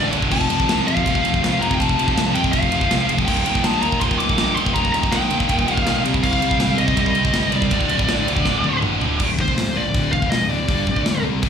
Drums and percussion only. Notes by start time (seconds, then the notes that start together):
0.13 ride
0.22 kick
0.31 kick, crash
0.41 kick
0.50 ride
0.60 kick
0.69 snare, ride
0.88 ride
0.97 kick
1.06 kick, ride
1.15 kick
1.25 ride
1.34 kick
1.44 snare, ride
1.62 ride
1.71 kick
1.80 kick, ride
1.89 kick
1.99 ride
2.08 kick
2.17 snare, ride
2.35 ride
2.44 kick
2.53 kick, ride
2.63 kick
2.72 ride
2.81 kick
2.91 snare, ride
3.09 ride
3.18 kick
3.28 kick, crash
3.37 kick
3.46 ride
3.55 kick
3.64 snare, ride
3.83 ride
3.92 kick
4.01 kick, ride
4.11 kick
4.20 ride
4.29 kick
4.38 snare, ride
4.57 ride
4.66 kick
4.76 kick, ride
4.85 kick
4.94 ride
5.03 kick
5.12 snare, ride
5.31 ride
5.40 kick
5.49 kick, ride
5.59 kick
5.68 ride
5.77 kick
5.87 snare, ride
6.05 ride
6.14 kick
6.23 kick, crash
6.33 kick
6.42 ride
6.51 kick
6.60 snare, ride
6.78 ride
6.88 kick
6.97 kick, ride
7.06 kick
7.15 ride
7.25 kick
7.34 snare, ride
7.52 ride
7.62 kick
7.71 kick, ride
7.81 kick
7.89 ride
7.99 kick
8.08 snare, ride
8.28 ride
8.37 kick
8.45 kick, snare
8.64 high tom
8.83 mid tom
9.01 floor tom
9.19 kick, crash
9.39 kick
9.48 kick
9.58 snare, open hi-hat
9.95 kick, open hi-hat
10.13 kick
10.22 kick
10.32 snare, open hi-hat
10.69 kick, open hi-hat
10.87 kick
10.96 kick
11.06 snare, open hi-hat
11.43 kick, open hi-hat